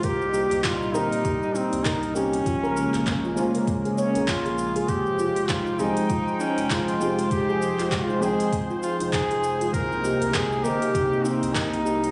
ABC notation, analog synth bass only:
X:1
M:4/4
L:1/16
Q:"Swing 16ths" 1/4=99
K:Fm
V:1 name="Analog synth bass" clef=bass
C,,3 C,,3 G,,, z C,, z2 C,, z C,,3 | B,,,3 B,,,3 F,,, z B,,, z2 B,,, z B,,,3 | F,,,3 F,,,3 C,, z F,,, z2 F,,, z F,,,3 | F,,,3 F,,,3 C,, z F,,, z2 F,,, z F,,,3 |
C,,3 C,,3 G,,, z C,, z2 C,, z C,,3 |]